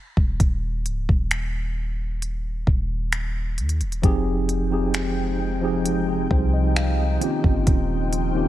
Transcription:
0.17 D#1, kick
0.40 D#1, kick, closed hi-hat
0.86 C#1, closed hi-hat
1.09 D#1, kick
1.31 finger snap, closed hi-hat
2.22 closed hi-hat
2.67 D#1, kick
3.12 finger snap, closed hi-hat
3.58 D#2, closed hi-hat
3.69 closed hi-hat
3.81 D#1, closed hi-hat
3.92 closed hi-hat
4.02 F1 C3 F3 G#3 C4 D#4 G4 G#4 G5, kick, closed hi-hat
4.49 closed hi-hat
4.70 F3 C4 D#4 G4 G#4
4.94 finger snap, closed hi-hat
5.61 F3 C4 D#4 G4 G#4
5.86 closed hi-hat
6.08 G#4
6.31 C2 C5, kick
6.53 D#5
6.76 F5, finger snap, closed hi-hat
6.99 D#5
7.20 C#3 D#3 F3 A#3 C4 C#4 F4 G4 C5 G5, closed hi-hat
7.44 G1, kick
7.67 D#1, kick, closed hi-hat
8.13 closed hi-hat
8.34 D#3 A#3 C4 C#4 F4 G4

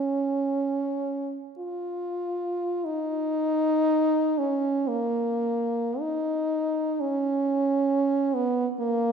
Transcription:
Already playing: C#4
1.59 F4
2.85 D#4
4.38 C#4
4.88 A#3
6.00 D#4
7.00 C#4
8.35 B3
8.79 A#3

